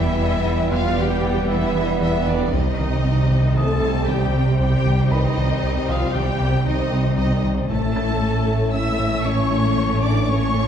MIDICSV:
0, 0, Header, 1, 12, 480
1, 0, Start_track
1, 0, Tempo, 517241
1, 2344, Time_signature, 5, 2, 24, 8
1, 9906, End_track
2, 0, Start_track
2, 0, Title_t, "Felt piano"
2, 0, Program_c, 0, 0
2, 0, Control_c, 0, 64, 127
2, 2363, Control_c, 0, 64, 0
2, 2508, Control_c, 0, 64, 127
2, 3315, Note_on_c, 0, 87, 65
2, 4712, Note_off_c, 0, 87, 0
2, 4749, Note_on_c, 0, 83, 66
2, 4754, Note_on_c, 0, 71, 45
2, 5480, Note_on_c, 0, 87, 54
2, 6149, Note_off_c, 0, 83, 0
2, 6152, Note_off_c, 0, 71, 0
2, 6875, Note_off_c, 0, 87, 0
2, 7163, Control_c, 0, 64, 0
2, 7328, Control_c, 0, 64, 127
2, 7389, Note_on_c, 0, 93, 53
2, 8789, Note_off_c, 0, 93, 0
2, 9906, End_track
3, 0, Start_track
3, 0, Title_t, "Violin section"
3, 0, Program_c, 1, 48
3, 0, Note_on_c, 1, 76, 101
3, 666, Note_off_c, 1, 76, 0
3, 673, Note_on_c, 1, 77, 101
3, 904, Note_off_c, 1, 77, 0
3, 915, Note_on_c, 1, 79, 84
3, 1390, Note_off_c, 1, 79, 0
3, 1395, Note_on_c, 1, 76, 93
3, 1860, Note_off_c, 1, 76, 0
3, 1883, Note_on_c, 1, 76, 91
3, 2109, Note_off_c, 1, 76, 0
3, 2122, Note_on_c, 1, 74, 84
3, 2353, Note_off_c, 1, 74, 0
3, 2360, Note_on_c, 1, 75, 86
3, 3312, Note_off_c, 1, 75, 0
3, 3314, Note_on_c, 1, 81, 89
3, 3780, Note_off_c, 1, 81, 0
3, 3787, Note_on_c, 1, 79, 80
3, 4255, Note_off_c, 1, 79, 0
3, 4266, Note_on_c, 1, 79, 99
3, 4735, Note_off_c, 1, 79, 0
3, 4750, Note_on_c, 1, 75, 97
3, 5453, Note_off_c, 1, 75, 0
3, 5473, Note_on_c, 1, 77, 90
3, 5707, Note_on_c, 1, 79, 97
3, 5709, Note_off_c, 1, 77, 0
3, 6185, Note_off_c, 1, 79, 0
3, 6190, Note_on_c, 1, 75, 89
3, 6654, Note_off_c, 1, 75, 0
3, 6665, Note_on_c, 1, 75, 81
3, 6900, Note_off_c, 1, 75, 0
3, 7140, Note_on_c, 1, 81, 97
3, 8065, Note_off_c, 1, 81, 0
3, 8102, Note_on_c, 1, 88, 96
3, 8574, Note_off_c, 1, 88, 0
3, 8580, Note_on_c, 1, 85, 97
3, 9302, Note_off_c, 1, 85, 0
3, 9308, Note_on_c, 1, 86, 88
3, 9540, Note_on_c, 1, 85, 108
3, 9541, Note_off_c, 1, 86, 0
3, 9906, Note_off_c, 1, 85, 0
3, 9906, End_track
4, 0, Start_track
4, 0, Title_t, "Viola section"
4, 0, Program_c, 2, 48
4, 0, Note_on_c, 2, 64, 74
4, 662, Note_on_c, 2, 65, 85
4, 664, Note_off_c, 2, 64, 0
4, 903, Note_off_c, 2, 65, 0
4, 915, Note_on_c, 2, 67, 81
4, 1389, Note_off_c, 2, 67, 0
4, 1390, Note_on_c, 2, 64, 77
4, 1857, Note_off_c, 2, 64, 0
4, 1870, Note_on_c, 2, 64, 66
4, 2102, Note_off_c, 2, 64, 0
4, 2118, Note_on_c, 2, 62, 60
4, 2351, Note_off_c, 2, 62, 0
4, 2352, Note_on_c, 2, 63, 72
4, 3304, Note_on_c, 2, 69, 88
4, 3308, Note_off_c, 2, 63, 0
4, 3781, Note_on_c, 2, 67, 71
4, 3784, Note_off_c, 2, 69, 0
4, 4251, Note_off_c, 2, 67, 0
4, 4262, Note_on_c, 2, 67, 76
4, 4734, Note_off_c, 2, 67, 0
4, 4741, Note_on_c, 2, 63, 77
4, 5463, Note_off_c, 2, 63, 0
4, 5468, Note_on_c, 2, 65, 81
4, 5706, Note_off_c, 2, 65, 0
4, 5709, Note_on_c, 2, 67, 76
4, 6177, Note_off_c, 2, 67, 0
4, 6192, Note_on_c, 2, 63, 75
4, 6658, Note_off_c, 2, 63, 0
4, 6669, Note_on_c, 2, 63, 60
4, 6902, Note_off_c, 2, 63, 0
4, 7152, Note_on_c, 2, 69, 80
4, 8071, Note_off_c, 2, 69, 0
4, 8112, Note_on_c, 2, 76, 84
4, 8579, Note_off_c, 2, 76, 0
4, 8591, Note_on_c, 2, 73, 82
4, 9302, Note_on_c, 2, 74, 73
4, 9307, Note_off_c, 2, 73, 0
4, 9543, Note_off_c, 2, 74, 0
4, 9546, Note_on_c, 2, 73, 73
4, 9906, Note_off_c, 2, 73, 0
4, 9906, End_track
5, 0, Start_track
5, 0, Title_t, "Violin section"
5, 0, Program_c, 3, 48
5, 0, Note_on_c, 3, 55, 86
5, 0, Note_on_c, 3, 59, 88
5, 2305, Note_off_c, 3, 59, 0
5, 2307, Note_off_c, 3, 55, 0
5, 2341, Note_on_c, 3, 60, 57
5, 2345, Note_on_c, 3, 55, 63
5, 7105, Note_off_c, 3, 60, 0
5, 7107, Note_off_c, 3, 55, 0
5, 7145, Note_on_c, 3, 57, 65
5, 7146, Note_on_c, 3, 61, 61
5, 9906, Note_off_c, 3, 57, 0
5, 9906, Note_off_c, 3, 61, 0
5, 9906, End_track
6, 0, Start_track
6, 0, Title_t, "Trombone section"
6, 0, Program_c, 4, 61
6, 0, Note_on_c, 4, 55, 90
6, 0, Note_on_c, 4, 59, 100
6, 2303, Note_off_c, 4, 55, 0
6, 2304, Note_off_c, 4, 59, 0
6, 2341, Note_on_c, 4, 55, 67
6, 2343, Note_on_c, 4, 60, 61
6, 7105, Note_off_c, 4, 55, 0
6, 7106, Note_off_c, 4, 60, 0
6, 7141, Note_on_c, 4, 52, 65
6, 7148, Note_on_c, 4, 61, 67
6, 9906, Note_off_c, 4, 52, 0
6, 9906, Note_off_c, 4, 61, 0
6, 9906, End_track
7, 0, Start_track
7, 0, Title_t, "French horn section"
7, 0, Program_c, 5, 60
7, 0, Note_on_c, 5, 52, 90
7, 667, Note_off_c, 5, 52, 0
7, 672, Note_on_c, 5, 53, 76
7, 904, Note_off_c, 5, 53, 0
7, 908, Note_on_c, 5, 55, 73
7, 1384, Note_on_c, 5, 52, 67
7, 1386, Note_off_c, 5, 55, 0
7, 1862, Note_off_c, 5, 52, 0
7, 1873, Note_on_c, 5, 52, 73
7, 2101, Note_on_c, 5, 50, 65
7, 2104, Note_off_c, 5, 52, 0
7, 2333, Note_on_c, 5, 51, 64
7, 2343, Note_off_c, 5, 50, 0
7, 3291, Note_on_c, 5, 57, 75
7, 3298, Note_off_c, 5, 51, 0
7, 3768, Note_off_c, 5, 57, 0
7, 3786, Note_on_c, 5, 55, 64
7, 4261, Note_off_c, 5, 55, 0
7, 4272, Note_on_c, 5, 55, 76
7, 4739, Note_off_c, 5, 55, 0
7, 4750, Note_on_c, 5, 51, 78
7, 5457, Note_on_c, 5, 53, 73
7, 5467, Note_off_c, 5, 51, 0
7, 5701, Note_off_c, 5, 53, 0
7, 5705, Note_on_c, 5, 55, 67
7, 6185, Note_off_c, 5, 55, 0
7, 6189, Note_on_c, 5, 51, 73
7, 6531, Note_off_c, 5, 51, 0
7, 6672, Note_on_c, 5, 51, 67
7, 6903, Note_off_c, 5, 51, 0
7, 7153, Note_on_c, 5, 57, 82
7, 8071, Note_off_c, 5, 57, 0
7, 8112, Note_on_c, 5, 64, 82
7, 8588, Note_off_c, 5, 64, 0
7, 8589, Note_on_c, 5, 61, 85
7, 9292, Note_off_c, 5, 61, 0
7, 9307, Note_on_c, 5, 62, 85
7, 9542, Note_on_c, 5, 61, 84
7, 9546, Note_off_c, 5, 62, 0
7, 9906, Note_off_c, 5, 61, 0
7, 9906, End_track
8, 0, Start_track
8, 0, Title_t, "Synth pluck"
8, 0, Program_c, 6, 84
8, 192, Note_on_c, 6, 55, 77
8, 334, Note_off_c, 6, 55, 0
8, 669, Note_on_c, 6, 52, 102
8, 811, Note_off_c, 6, 52, 0
8, 909, Note_on_c, 6, 55, 69
8, 1051, Note_off_c, 6, 55, 0
8, 1150, Note_on_c, 6, 52, 104
8, 1292, Note_off_c, 6, 52, 0
8, 1392, Note_on_c, 6, 55, 64
8, 1533, Note_off_c, 6, 55, 0
8, 1625, Note_on_c, 6, 59, 67
8, 1769, Note_off_c, 6, 59, 0
8, 1866, Note_on_c, 6, 52, 89
8, 2010, Note_off_c, 6, 52, 0
8, 2107, Note_on_c, 6, 55, 61
8, 2250, Note_off_c, 6, 55, 0
8, 2345, Note_on_c, 6, 48, 96
8, 2489, Note_off_c, 6, 48, 0
8, 2586, Note_on_c, 6, 51, 72
8, 2729, Note_off_c, 6, 51, 0
8, 3063, Note_on_c, 6, 48, 90
8, 3207, Note_off_c, 6, 48, 0
8, 3303, Note_on_c, 6, 51, 61
8, 3447, Note_off_c, 6, 51, 0
8, 3542, Note_on_c, 6, 48, 96
8, 3686, Note_off_c, 6, 48, 0
8, 3785, Note_on_c, 6, 51, 66
8, 3929, Note_off_c, 6, 51, 0
8, 4026, Note_on_c, 6, 55, 66
8, 4170, Note_off_c, 6, 55, 0
8, 4264, Note_on_c, 6, 48, 76
8, 4408, Note_off_c, 6, 48, 0
8, 4502, Note_on_c, 6, 51, 61
8, 4647, Note_off_c, 6, 51, 0
8, 4741, Note_on_c, 6, 48, 87
8, 4886, Note_off_c, 6, 48, 0
8, 4983, Note_on_c, 6, 51, 64
8, 5128, Note_off_c, 6, 51, 0
8, 5465, Note_on_c, 6, 48, 89
8, 5609, Note_off_c, 6, 48, 0
8, 5703, Note_on_c, 6, 51, 65
8, 5848, Note_off_c, 6, 51, 0
8, 5943, Note_on_c, 6, 48, 97
8, 6087, Note_off_c, 6, 48, 0
8, 6183, Note_on_c, 6, 51, 55
8, 6327, Note_off_c, 6, 51, 0
8, 6425, Note_on_c, 6, 55, 62
8, 6569, Note_off_c, 6, 55, 0
8, 6662, Note_on_c, 6, 48, 77
8, 6807, Note_off_c, 6, 48, 0
8, 6905, Note_on_c, 6, 51, 52
8, 7049, Note_off_c, 6, 51, 0
8, 7148, Note_on_c, 6, 57, 83
8, 7291, Note_off_c, 6, 57, 0
8, 7384, Note_on_c, 6, 61, 64
8, 7528, Note_off_c, 6, 61, 0
8, 7868, Note_on_c, 6, 57, 85
8, 8011, Note_off_c, 6, 57, 0
8, 8107, Note_on_c, 6, 61, 60
8, 8250, Note_off_c, 6, 61, 0
8, 8343, Note_on_c, 6, 57, 77
8, 8487, Note_off_c, 6, 57, 0
8, 8582, Note_on_c, 6, 61, 53
8, 8727, Note_off_c, 6, 61, 0
8, 8824, Note_on_c, 6, 64, 53
8, 8968, Note_off_c, 6, 64, 0
8, 9063, Note_on_c, 6, 57, 84
8, 9208, Note_off_c, 6, 57, 0
8, 9310, Note_on_c, 6, 61, 52
8, 9452, Note_off_c, 6, 61, 0
8, 9546, Note_on_c, 6, 57, 78
8, 9689, Note_off_c, 6, 57, 0
8, 9787, Note_on_c, 6, 61, 63
8, 9906, Note_off_c, 6, 61, 0
8, 9906, End_track
9, 0, Start_track
9, 0, Title_t, "Cello section"
9, 0, Program_c, 7, 48
9, 0, Note_on_c, 7, 40, 105
9, 2307, Note_off_c, 7, 40, 0
9, 2347, Note_on_c, 7, 48, 72
9, 7109, Note_off_c, 7, 48, 0
9, 7148, Note_on_c, 7, 45, 69
9, 9906, Note_off_c, 7, 45, 0
9, 9906, End_track
10, 0, Start_track
10, 0, Title_t, "Analog synth bass"
10, 0, Program_c, 8, 38
10, 184, Note_on_c, 8, 40, 75
10, 328, Note_off_c, 8, 40, 0
10, 424, Note_on_c, 8, 40, 66
10, 568, Note_off_c, 8, 40, 0
10, 670, Note_on_c, 8, 40, 94
10, 812, Note_off_c, 8, 40, 0
10, 905, Note_on_c, 8, 40, 67
10, 1049, Note_off_c, 8, 40, 0
10, 1144, Note_on_c, 8, 40, 106
10, 1288, Note_off_c, 8, 40, 0
10, 1387, Note_on_c, 8, 40, 79
10, 1530, Note_off_c, 8, 40, 0
10, 1625, Note_on_c, 8, 52, 69
10, 1768, Note_off_c, 8, 52, 0
10, 1866, Note_on_c, 8, 40, 97
10, 2010, Note_off_c, 8, 40, 0
10, 2106, Note_on_c, 8, 40, 71
10, 2250, Note_off_c, 8, 40, 0
10, 2347, Note_on_c, 8, 36, 90
10, 2490, Note_off_c, 8, 36, 0
10, 2588, Note_on_c, 8, 36, 66
10, 2731, Note_off_c, 8, 36, 0
10, 2832, Note_on_c, 8, 36, 61
10, 2974, Note_off_c, 8, 36, 0
10, 3071, Note_on_c, 8, 36, 89
10, 3213, Note_off_c, 8, 36, 0
10, 3308, Note_on_c, 8, 36, 68
10, 3451, Note_off_c, 8, 36, 0
10, 3553, Note_on_c, 8, 36, 90
10, 3695, Note_off_c, 8, 36, 0
10, 3790, Note_on_c, 8, 36, 72
10, 3932, Note_off_c, 8, 36, 0
10, 4030, Note_on_c, 8, 48, 59
10, 4172, Note_off_c, 8, 48, 0
10, 4267, Note_on_c, 8, 36, 83
10, 4410, Note_off_c, 8, 36, 0
10, 4508, Note_on_c, 8, 36, 63
10, 4651, Note_off_c, 8, 36, 0
10, 4743, Note_on_c, 8, 36, 74
10, 4887, Note_off_c, 8, 36, 0
10, 4986, Note_on_c, 8, 36, 60
10, 5129, Note_off_c, 8, 36, 0
10, 5227, Note_on_c, 8, 36, 60
10, 5370, Note_off_c, 8, 36, 0
10, 5469, Note_on_c, 8, 36, 84
10, 5611, Note_off_c, 8, 36, 0
10, 5709, Note_on_c, 8, 36, 63
10, 5852, Note_off_c, 8, 36, 0
10, 5945, Note_on_c, 8, 36, 88
10, 6089, Note_off_c, 8, 36, 0
10, 6184, Note_on_c, 8, 36, 70
10, 6328, Note_off_c, 8, 36, 0
10, 6424, Note_on_c, 8, 48, 61
10, 6568, Note_off_c, 8, 48, 0
10, 6663, Note_on_c, 8, 36, 81
10, 6807, Note_off_c, 8, 36, 0
10, 6904, Note_on_c, 8, 36, 65
10, 7048, Note_off_c, 8, 36, 0
10, 7150, Note_on_c, 8, 45, 79
10, 7293, Note_off_c, 8, 45, 0
10, 7387, Note_on_c, 8, 45, 56
10, 7530, Note_off_c, 8, 45, 0
10, 7626, Note_on_c, 8, 45, 53
10, 7770, Note_off_c, 8, 45, 0
10, 7867, Note_on_c, 8, 45, 74
10, 8010, Note_off_c, 8, 45, 0
10, 8110, Note_on_c, 8, 45, 52
10, 8252, Note_off_c, 8, 45, 0
10, 8347, Note_on_c, 8, 45, 84
10, 8490, Note_off_c, 8, 45, 0
10, 8590, Note_on_c, 8, 45, 61
10, 8732, Note_off_c, 8, 45, 0
10, 8826, Note_on_c, 8, 57, 58
10, 8970, Note_off_c, 8, 57, 0
10, 9066, Note_on_c, 8, 45, 89
10, 9209, Note_off_c, 8, 45, 0
10, 9308, Note_on_c, 8, 45, 65
10, 9451, Note_off_c, 8, 45, 0
10, 9542, Note_on_c, 8, 45, 77
10, 9687, Note_off_c, 8, 45, 0
10, 9784, Note_on_c, 8, 45, 63
10, 9906, Note_off_c, 8, 45, 0
10, 9906, End_track
11, 0, Start_track
11, 0, Title_t, "Double bass section"
11, 0, Program_c, 10, 48
11, 0, Note_on_c, 10, 28, 97
11, 2307, Note_off_c, 10, 28, 0
11, 2347, Note_on_c, 10, 36, 72
11, 7108, Note_off_c, 10, 36, 0
11, 7149, Note_on_c, 10, 33, 71
11, 9906, Note_off_c, 10, 33, 0
11, 9906, End_track
12, 0, Start_track
12, 0, Title_t, "Sub bass"
12, 0, Program_c, 11, 38
12, 0, Note_on_c, 11, 28, 79
12, 2351, Note_on_c, 11, 36, 70
12, 2365, Note_off_c, 11, 28, 0
12, 7150, Note_on_c, 11, 33, 64
12, 7163, Note_off_c, 11, 36, 0
12, 9906, Note_off_c, 11, 33, 0
12, 9906, End_track
0, 0, End_of_file